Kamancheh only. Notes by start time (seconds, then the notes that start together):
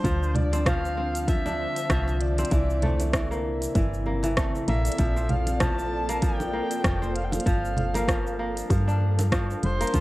Already playing: C5
0.35 D5
0.66 F5
1.28 E5
2.21 D5
4.68 E5
5.30 F5
5.60 A5
6.22 G5
7.16 F5
7.24 G5
7.31 F5
9.64 C5